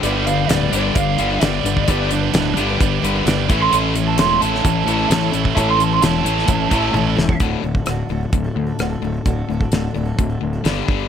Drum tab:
HH |x-x-x-x-x-x-x-x-|x-x-x-x-x-x-x-x-|x-x-x-x-x-x-x-x-|x-x-x-x-x-x-----|
SD |----o-------o---|----o-------o---|----o--o----o---|----o--o------o-|
T1 |----------------|----------------|----------------|------------o---|
BD |--------o------o|o-------o-----o-|--------o------o|o-------o-o----o|

HH |x---x---x---x---|x---x---x---x---|
SD |----r-------r---|----o-------o---|
T1 |----------------|----------------|
BD |o--o----o-------|o--o----o-----o-|